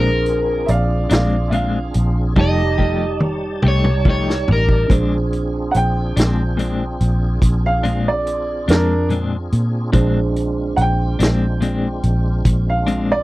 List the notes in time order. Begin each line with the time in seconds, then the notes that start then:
Already playing: A#1 C4 D4 F4 G#4 A#4 C5
0.26 closed hi-hat
0.66 A#1 D5 E5, closed hi-hat
0.71 F5
1.10 A#1 G#3 C4 D4 D5 F5, snare, closed hi-hat
1.49 A#2 G#3 E5 F5, closed hi-hat
1.53 C4 D4
1.94 A#1, closed hi-hat
2.36 F1 F3 G3 A3 D#4 G4 A5, kick, high tom
2.40 D#5
2.78 F3 A3 D#4 G4, kick
3.20 mid tom
3.24 C#5
3.62 C2 D#4 G4, mid tom
3.66 A3 C#5
3.84 mid tom
4.05 F3 A3 D#4 G4, kick
4.10 C#5
4.30 snare
4.48 A1, floor tom
4.52 A#4
4.69 kick
4.88 A#1 A#2 G#3 C4 D4 F4 G#4 C5, kick, closed hi-hat
4.93 D4
5.33 closed hi-hat
5.71 A#1 F#5, closed hi-hat
5.76 G5
6.17 A#1 G#3 C4 D4, snare, closed hi-hat
6.57 A#2 G#3 C4 D4, closed hi-hat
7.00 A#1, closed hi-hat
7.42 A#1, kick, closed hi-hat
7.66 F5
7.83 A#2 G#3 C4 D4, closed hi-hat
8.08 D5
8.27 closed hi-hat
8.68 F2 G#3 C4 D4 A#4, snare, closed hi-hat
9.09 A#2 G#3 C4 D4, closed hi-hat
9.52 A#2, closed hi-hat
9.92 A#1 A#2 G#3 C4 D4 F4 G#4 C5, kick, closed hi-hat
10.36 closed hi-hat
10.76 A#1 F#5, closed hi-hat
10.81 G5
11.19 A#1 G#3 C4 D4, snare, closed hi-hat
11.61 A#2 G#3 C4 D4, closed hi-hat
12.03 A#1, closed hi-hat
12.45 A#1, kick, closed hi-hat
12.70 F5
12.87 A#2 G#3 C4 D4, closed hi-hat
13.12 D5